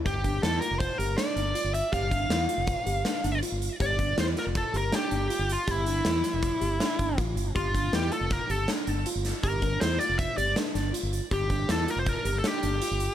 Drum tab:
HH |xxxxxxxxxx|xxxxxxxxxx|xxxxxxxxxx|xxxxxxxxxx|
SD |--o---o---|--o---o---|--oo--o---|--oo--o---|
BD |oo--o-----|oo--o-----|oo--o-----|o---o--oo-|

HH |xxxxxxxxxx|xxxxxxxxxx|xxxxxxxxxx|
SD |--o---o--o|--o---oo--|--o---o---|
BD |oo--o-----|oo--o-----|oo--o-----|